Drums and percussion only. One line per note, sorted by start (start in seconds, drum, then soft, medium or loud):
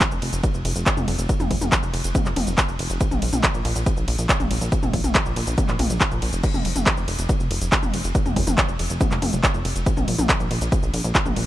0.01 kick loud
0.01 clap loud
0.01 closed hi-hat medium
0.01 ride medium
0.01 shaker medium
0.11 closed hi-hat soft
0.11 shaker soft
0.22 open hi-hat medium
0.22 ride medium
0.33 closed hi-hat medium
0.33 shaker medium
0.44 kick loud
0.44 closed hi-hat medium
0.44 ride medium
0.44 shaker medium
0.54 closed hi-hat soft
0.54 shaker soft
0.65 open hi-hat loud
0.65 ride medium
0.76 closed hi-hat medium
0.76 shaker medium
0.86 kick loud
0.86 clap loud
0.86 closed hi-hat soft
0.86 ride medium
0.86 shaker medium
0.97 closed hi-hat soft
0.97 mid tom medium
0.97 shaker soft
1.08 open hi-hat loud
1.08 ride medium
1.19 closed hi-hat medium
1.19 shaker medium
1.29 kick loud
1.29 closed hi-hat medium
1.29 ride medium
1.29 shaker medium
1.40 closed hi-hat soft
1.40 mid tom medium
1.40 shaker soft
1.51 kick medium
1.51 open hi-hat loud
1.51 ride medium
1.61 closed hi-hat medium
1.61 mid tom medium
1.61 shaker medium
1.72 kick loud
1.72 clap loud
1.72 closed hi-hat medium
1.72 ride medium
1.72 shaker medium
1.83 closed hi-hat soft
1.83 shaker soft
1.94 open hi-hat medium
1.94 ride medium
2.04 closed hi-hat medium
2.04 shaker medium
2.15 kick loud
2.15 closed hi-hat medium
2.15 mid tom medium
2.15 ride medium
2.15 shaker medium
2.26 clap soft
2.26 closed hi-hat soft
2.26 shaker soft
2.36 open hi-hat loud
2.36 mid tom medium
2.36 ride medium
2.47 closed hi-hat medium
2.47 shaker medium
2.58 kick loud
2.58 clap loud
2.58 closed hi-hat medium
2.58 ride medium
2.58 shaker medium
2.69 closed hi-hat soft
2.69 shaker soft
2.79 open hi-hat loud
2.79 ride medium
2.90 closed hi-hat medium
2.90 shaker medium
3.01 kick loud
3.01 closed hi-hat medium
3.01 ride medium
3.01 shaker medium
3.11 closed hi-hat soft
3.11 mid tom medium
3.11 shaker soft
3.22 open hi-hat loud
3.22 ride medium
3.33 closed hi-hat medium
3.33 mid tom medium
3.33 shaker medium
3.44 kick loud
3.44 clap loud
3.44 closed hi-hat medium
3.44 ride medium
3.44 shaker medium
3.54 closed hi-hat soft
3.54 shaker soft
3.65 open hi-hat medium
3.65 ride medium
3.76 closed hi-hat medium
3.76 shaker medium
3.86 kick loud
3.86 closed hi-hat medium
3.86 ride medium
3.86 shaker medium
3.97 closed hi-hat soft
3.97 shaker soft
4.08 open hi-hat loud
4.08 ride medium
4.18 closed hi-hat medium
4.18 shaker medium
4.29 kick loud
4.29 clap loud
4.29 closed hi-hat medium
4.29 ride medium
4.29 shaker medium
4.40 closed hi-hat soft
4.40 mid tom medium
4.40 shaker soft
4.51 open hi-hat medium
4.51 ride medium
4.61 closed hi-hat medium
4.61 shaker medium
4.72 kick loud
4.72 closed hi-hat medium
4.72 ride medium
4.72 shaker medium
4.83 closed hi-hat soft
4.83 mid tom medium
4.83 shaker soft
4.93 kick medium
4.93 open hi-hat loud
4.93 ride medium
5.04 closed hi-hat medium
5.04 mid tom medium
5.04 shaker medium
5.15 kick loud
5.15 clap loud
5.15 closed hi-hat medium
5.15 ride medium
5.15 shaker medium
5.26 closed hi-hat soft
5.26 shaker soft
5.36 open hi-hat medium
5.36 ride medium
5.47 closed hi-hat medium
5.47 shaker medium
5.58 kick loud
5.58 closed hi-hat medium
5.58 mid tom medium
5.58 ride medium
5.58 shaker medium
5.68 clap soft
5.68 closed hi-hat soft
5.68 shaker soft
5.79 open hi-hat loud
5.79 mid tom medium
5.79 ride medium
5.90 closed hi-hat medium
5.90 shaker medium
6.01 kick loud
6.01 clap loud
6.01 closed hi-hat medium
6.01 ride medium
6.01 shaker medium
6.11 closed hi-hat soft
6.11 shaker soft
6.22 open hi-hat medium
6.22 ride medium
6.33 closed hi-hat medium
6.33 shaker medium
6.44 kick loud
6.44 closed hi-hat medium
6.44 crash medium
6.44 ride medium
6.44 shaker medium
6.54 closed hi-hat soft
6.54 mid tom medium
6.54 shaker soft
6.65 open hi-hat loud
6.65 ride medium
6.76 closed hi-hat medium
6.76 mid tom medium
6.76 shaker medium
6.86 kick loud
6.86 clap loud
6.86 closed hi-hat medium
6.86 ride medium
6.86 shaker medium
6.97 closed hi-hat soft
6.97 shaker soft
7.08 open hi-hat medium
7.08 ride medium
7.19 closed hi-hat medium
7.19 shaker medium
7.29 kick loud
7.29 closed hi-hat medium
7.29 ride medium
7.29 shaker soft
7.40 closed hi-hat soft
7.40 shaker soft
7.51 open hi-hat loud
7.51 ride medium
7.61 closed hi-hat medium
7.61 shaker medium
7.72 kick loud
7.72 clap loud
7.72 closed hi-hat medium
7.72 ride medium
7.72 shaker medium
7.83 closed hi-hat soft
7.83 mid tom medium
7.83 shaker soft
7.94 open hi-hat loud
7.94 ride medium
8.04 closed hi-hat medium
8.04 shaker medium
8.15 kick loud
8.15 closed hi-hat medium
8.15 ride medium
8.15 shaker medium
8.26 closed hi-hat soft
8.26 mid tom medium
8.26 shaker soft
8.36 kick medium
8.36 open hi-hat loud
8.36 ride medium
8.47 closed hi-hat medium
8.47 mid tom medium
8.47 shaker medium
8.58 kick loud
8.58 clap loud
8.58 closed hi-hat medium
8.58 ride medium
8.58 shaker medium
8.69 closed hi-hat soft
8.69 shaker soft
8.79 open hi-hat loud
8.79 ride medium
8.90 closed hi-hat medium
8.90 shaker medium
9.01 kick loud
9.01 closed hi-hat medium
9.01 mid tom medium
9.01 ride medium
9.01 shaker medium
9.11 clap soft
9.11 closed hi-hat soft
9.11 shaker soft
9.22 open hi-hat loud
9.22 mid tom medium
9.22 ride medium
9.33 closed hi-hat medium
9.33 shaker medium
9.44 kick loud
9.44 clap loud
9.44 closed hi-hat medium
9.44 ride medium
9.44 shaker soft
9.54 closed hi-hat soft
9.54 shaker soft
9.65 open hi-hat loud
9.65 ride medium
9.76 closed hi-hat medium
9.76 shaker medium
9.86 kick loud
9.86 closed hi-hat medium
9.86 ride medium
9.86 shaker medium
9.97 closed hi-hat soft
9.97 mid tom medium
9.97 shaker soft
10.08 open hi-hat loud
10.08 ride medium
10.19 closed hi-hat medium
10.19 mid tom medium
10.19 shaker medium
10.29 kick loud
10.29 clap loud
10.29 closed hi-hat medium
10.29 ride medium
10.29 shaker medium
10.40 closed hi-hat soft
10.40 shaker soft
10.51 open hi-hat loud
10.51 ride medium
10.61 closed hi-hat medium
10.61 shaker medium
10.72 kick loud
10.72 closed hi-hat medium
10.72 ride medium
10.72 shaker medium
10.83 closed hi-hat soft
10.83 shaker soft
10.94 open hi-hat loud
10.94 ride medium
11.04 closed hi-hat medium
11.04 shaker medium
11.15 kick loud
11.15 clap loud
11.15 closed hi-hat medium
11.15 ride medium
11.15 shaker medium
11.26 closed hi-hat soft
11.26 mid tom medium
11.26 shaker soft
11.36 open hi-hat loud
11.36 ride medium